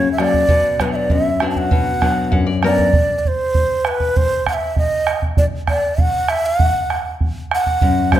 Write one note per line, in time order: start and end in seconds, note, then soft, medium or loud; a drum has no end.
0.00 0.48 C#3 medium
0.00 0.12 C#5 medium
0.12 0.22 E5 medium
0.18 0.43 F#3 medium
0.18 0.44 A#3 soft
0.18 0.82 D5 loud
0.18 bombo rim soft
0.34 bombo low soft
0.49 1.08 B2 medium
0.49 bombo low medium
0.79 1.29 F#3 soft
0.79 1.29 B3 soft
0.79 1.29 D4 soft
0.79 0.91 B4 medium
0.79 bombo rim soft
0.79 bombo low soft
0.92 1.13 D5 medium
0.92 0.97 E5 medium
1.10 1.70 F#2 medium
1.10 1.50 E5 medium
1.10 bombo low medium
1.40 1.90 F#3 soft
1.40 1.90 B3 soft
1.40 1.91 D4 medium
1.40 bombo rim soft
1.50 1.60 A5 medium
1.56 2.35 F#5 medium
1.56 bombo low soft
1.71 2.31 B2 medium
1.71 bombo low medium
2.01 2.50 F#3 soft
2.01 2.51 B3 soft
2.01 2.51 D4 medium
2.01 bombo rim soft
2.01 bombo low soft
2.32 2.91 F#2 medium
2.32 2.46 F#5 medium
2.32 bombo low medium
2.47 2.61 D5 medium
2.63 2.88 F#3 soft
2.63 2.88 B3 soft
2.63 2.88 D4 soft
2.63 2.92 A#4 medium
2.63 3.19 D5 medium
2.63 bombo rim soft
2.78 bombo low soft
2.93 bombo low medium
3.19 3.29 D5 medium
3.25 3.89 C5 medium
3.25 bombo low soft
3.54 bombo low medium
3.85 4.18 B4 medium
3.85 bombo rim soft
4.00 bombo low soft
4.16 4.47 C5 medium
4.16 bombo low medium
4.46 4.54 F#5 medium
4.46 bombo rim medium
4.46 bombo low soft
4.53 4.76 E5 medium
4.76 5.20 D#5 medium
4.76 bombo low medium
5.07 bombo rim medium
5.22 bombo low soft
5.37 5.45 D5 medium
5.37 bombo low medium
5.67 6.02 D5 medium
5.67 bombo rim medium
5.67 bombo low soft
5.98 6.31 F#5 medium
5.98 bombo low medium
6.28 6.47 E5 medium
6.28 bombo rim medium
6.46 7.10 F#5 medium
6.59 bombo low medium
6.90 bombo rim soft
7.21 bombo low medium
7.51 8.17 F#5 medium
7.51 bombo rim medium
7.66 bombo low soft
7.81 8.20 F#2 medium
7.81 bombo low medium
8.12 8.20 F#3 soft
8.12 8.20 A#3 soft
8.12 8.20 C#4 medium
8.12 8.20 C#5 medium
8.12 bombo rim medium
8.12 bombo low medium